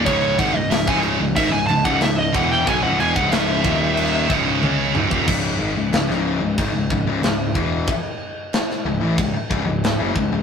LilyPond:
<<
  \new Staff \with { instrumentName = "Lead electric guitar" } { \time 4/4 \key cis \minor \tempo 4 = 92 cis''8 fis''16 dis''16 e''16 gis''16 r8 e''16 gis''16 a''16 fis''16 e''16 dis''16 fis''16 g''16 | gis''16 fis''16 gis''16 fis''16 e''4. r4. | r1 | r1 | }
  \new Staff \with { instrumentName = "Distorted electric guitar" } { \clef bass \time 4/4 \key cis \minor <cis, gis, cis>8 <gis, dis>16 <cis, gis,>16 <cis, gis,>16 <cis, gis, cis>8 <cis, gis,>16 <gis, dis>16 <cis, gis,>16 <cis, gis,>16 <cis, gis,>16 <cis, gis,>8 <e, b, e>8 | <b, fis>16 <cis, gis,>16 <e, b,>16 <cis, gis, cis>8. <dis, ais, dis>4 <cis, gis, cis>8 <cis gis cis'>8 <cis, gis,>16 <dis, ais,>16 | <cis, gis, cis>8 <gis, dis>16 <cis, gis,>16 <cis, gis,>16 <cis, gis, cis>8 <cis, gis,>16 <gis, dis>16 <cis, gis,>16 <cis, gis,>16 <cis, gis,>16 <cis, gis,>8 <e, b, e>8 | r4. <cis, gis,>16 <a, e>16 <cis, gis,>16 r16 <cis, gis,>16 <cis, gis,>8 <fis, cis>16 <cis, gis,>16 <cis, gis,>16 | }
  \new Staff \with { instrumentName = "Distorted electric guitar" } { \clef bass \time 4/4 \key cis \minor <cis, gis, cis>8 <gis, dis>16 <cis, gis,>16 <cis, gis,>16 <cis, gis, cis>8 <cis, gis,>16 <gis, dis>16 <cis, gis,>16 <cis, gis,>16 <cis, gis,>16 <cis, gis,>8 <e, b, e>8 | <b, fis>16 <cis, gis,>16 <e, b,>16 <cis, gis, cis>8. <dis, ais, dis>4 <cis, gis, cis>8 <cis gis cis'>8 <cis, gis,>16 <dis, ais,>16 | r1 | r1 | }
  \new Staff \with { instrumentName = "Picked electric bass" } { \clef bass \time 4/4 \key cis \minor cis,,8 gis,,16 cis,,16 cis,,16 cis,,8 cis,,16 gis,,16 cis,,16 cis,,16 cis,,16 cis,,8 e,,8 | b,,16 cis,,16 e,,16 cis,,8. dis,,4 cis,,8 cis,8 cis,,16 dis,,16 | cis,,8 gis,,16 cis,,16 cis,,16 cis,,8 cis,,16 gis,,16 cis,,16 cis,,16 cis,,16 cis,,8 e,,8 | r4. cis,,16 a,,16 cis,,16 r16 cis,,16 cis,,8 fis,,16 cis,,16 cis,,16 | }
  \new DrumStaff \with { instrumentName = "Drums" } \drummode { \time 4/4 <cymc bd>8 <cymc bd>8 <cymc sn>16 bd16 cymc8 <cymc bd>8 cymc16 bd16 <cymc sn>8 <cymc bd>16 sn16 | <cymc bd>8 cymc16 bd16 <cymc sn>8 <cymc bd>8 cymc8 <cymc bd>8 tommh8 toml16 bd16 | <cymc bd>4 <cymc sn>16 sn8. <cymc bd>8 bd8 <cymc sn>8 bd8 | <cymc bd>4 <cymc sn>16 sn8. <cymc bd>8 bd8 <cymc sn>8 bd8 | }
>>